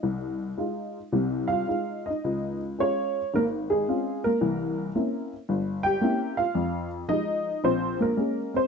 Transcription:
X:1
M:4/4
L:1/8
Q:"Swing" 1/4=111
K:Fm
V:1 name="Honky-tonk piano"
e4- e [Ff]2 [Ee]- | [Ee] z d2 [B,B] [A,A]2 [B,B]- | [B,B]3 z2 [Gg]2 [Ff]- | [Ff] z [Ee]2 [Cc] [B,B]2 [Cc] |]
V:2 name="Honky-tonk piano"
C,,2 [A,EF] z [C,,C,]2 [A,EF] z | D,,2 [A,DF] z A,,,2 [CDF] z | [C,,=E,]2 [B,CD=E] z G,,,2 [B,CDE] z | F,,2 [F,A,] z B,,,2 [A,B,D] z |]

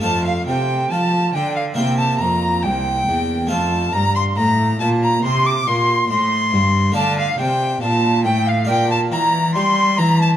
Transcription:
X:1
M:4/4
L:1/16
Q:1/4=69
K:F
V:1 name="Flute"
a f g2 a2 g f g a b2 g4 | a2 b c' b2 a b c' d' c'2 c'3 z | [K:Dm] a f g2 a2 g f g a b2 c'2 b a |]
V:2 name="Violin"
a f g2 a2 g f g a b2 g4 | a2 b c' b2 a b c' d' c'2 c'4 | [K:Dm] a f g2 a2 g f g a b2 c'2 b a |]
V:3 name="Harpsichord"
[A,Fc]8 [B,Ec]8 | [A,Fc]16 | [K:Dm] [A,Fd]8 [Fd]8 |]
V:4 name="Harpsichord" clef=bass
F,,2 C,2 F,2 D,2 C,2 F,,2 C,,2 E,,2 | F,,2 G,,2 A,,2 B,,2 C,2 B,,2 A,,2 G,,2 | [K:Dm] D,2 C,2 B,,2 A,,2 B,,2 E,2 G,2 E,2 |]
V:5 name="Cello" clef=bass
F,,2 C,2 F,2 D,2 C,2 F,,2 C,,2 E,,2 | F,,2 G,,2 A,,2 B,,2 C,2 B,,2 A,,2 G,,2 | [K:Dm] D,2 C,2 B,,2 A,,2 B,,2 E,2 G,2 E,2 |]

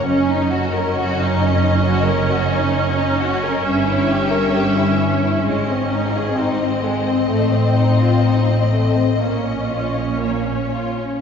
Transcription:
X:1
M:4/4
L:1/16
Q:1/4=65
K:Ebdor
V:1 name="Violin section"
e16 | =e8 _e8- | e12 d4 |]
V:2 name="Violin section"
D E G B G E D E G B G E D E G B | D =E =G B G E D E A, C _E A E C A, C | =A, C E F E C A, C B, D F D B, D F D |]
V:3 name="Viola section"
D16- | D12 C4- | C8 D8 |]
V:4 name="Cello section" clef=bass
G,,16 | =G,,8 A,,8 | =A,,8 B,,8 |]
V:5 name="Double bass section" clef=bass
G,,,16 | =G,,,8 A,,,8 | =A,,,8 B,,,8 |]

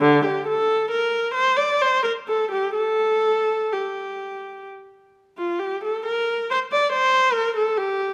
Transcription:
X:1
M:3/4
L:1/16
Q:1/4=67
K:Gm
V:1 name="Viola"
D, G A2 B2 c d c B A G | A4 G4 z3 F | G A B2 c d c2 B A G2 |]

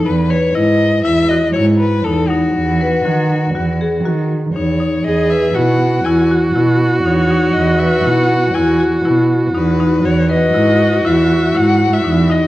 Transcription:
X:1
M:5/4
L:1/16
Q:1/4=120
K:E
V:1 name="Violin"
B2 c2 d4 e2 d2 c2 B2 A2 F2- | F12- F2 z2 c4 | d2 e2 f4 g2 z6 c4 | d2 e2 f4 g2 z6 B4 |
c2 d6 e4 f3 e3 d2 |]
V:2 name="Viola"
z16 z4 | z16 z4 | G4 F16- | F16- F4 |
F16- F4 |]
V:3 name="Marimba"
z2 B2 E4 E2 F2 E4 D2 D2 | z2 B2 F4 F2 G2 F4 D2 D2 | z2 B2 E4 E2 F2 E4 D2 D2 | z2 B2 E4 E2 F2 E4 D2 D2 |
z2 B2 E4 E2 F2 E4 D2 D2 |]
V:4 name="Cello" clef=bass
E,,4 G,,4 E,,4 G,,4 E,,4 | E,,4 D,4 E,,4 D,4 E,,4 | E,,4 B,,4 E,,4 B,,4 E,,4 | E,,4 B,,4 E,,4 B,,4 E,,4 |
E,,4 G,,4 E,,4 G,,4 E,,4 |]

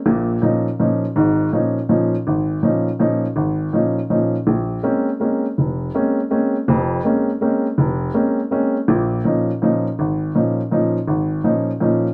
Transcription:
X:1
M:3/4
L:1/8
Q:"Swing" 1/4=163
K:Db
V:1 name="Upright piano"
[B,,,B,,]2 [B,,F,DE] z [B,,F,DE] z | [A,,,A,,]2 [B,,F,DE] z [B,,F,DE] z | A,,,2 [B,,F,DE] z [B,,F,DE] z | A,,,2 [B,,F,DE] z [B,,F,DE] z |
B,,,2 [A,B,CD] z [A,B,CD] z | F,,,2 [A,B,CD] z [A,B,CD] z | [F,,,F,,]2 [A,B,CD] z [A,B,CD] z | F,,,2 [A,B,CD] z [A,B,CD] z |
[B,,,B,,]2 [B,,F,DE] z [B,,F,DE] z | A,,,2 [B,,F,DE] z [B,,F,DE] z | A,,,2 [B,,F,DE] z [B,,F,DE] z |]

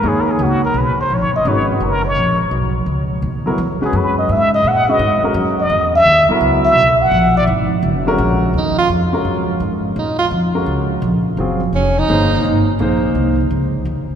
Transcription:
X:1
M:4/4
L:1/8
Q:"Swing" 1/4=169
K:C#dor
V:1 name="Muted trumpet"
(3G A G F A B ^B c d | c F A c2 z3 | z4 z G B d | e d f d2 z2 d- |
d e2 c z e2 f- | f =d z6 | [K:Ebdor] z8 | z8 |
z8 | z8 |]
V:2 name="Upright piano"
[A,DGc]3 z4 z | [G,CFB]3 z4 z | z3 [F,B,EA] z [G,CFB]3 | z3 [G,CFB] z [G,CFA]3 |
z3 [F,B,EA]3 z2 | z4 z [G,CFA]3 | [K:Ebdor] z3 [A,DGB]3 z2 | z3 [A,DGB]3 z2 |
[G,CFA] z3 [B,EAc]3 z | [B,EAc]3 z4 z |]
V:3 name="Tenor saxophone"
z8 | z8 | z8 | z8 |
z8 | z8 | [K:Ebdor] E F z6 | E F z6 |
z2 D E3 z2 | z8 |]
V:4 name="Upright bass" clef=bass
D,,2 C,,2 B,,, z (3A,,, G,,, F,,, | G,,,2 F,,,2 A,,,2 B,,,2 | C,,2 D,,2 E,, z F,,2 | G,,2 A,,2 G,, z F,,2 |
E,,2 D,, z C,,2 B,,,2 | A,,,2 G,,,2 F,,,2 A,,,2 | [K:Ebdor] E,,2 F,,2 G,,2 A,,2 | B,,2 F,,2 D,,2 B,,,2 |
G,,,2 F,,,2 =G,,,2 A,,, z | B,,,2 C,,2 D,,2 E,, z |]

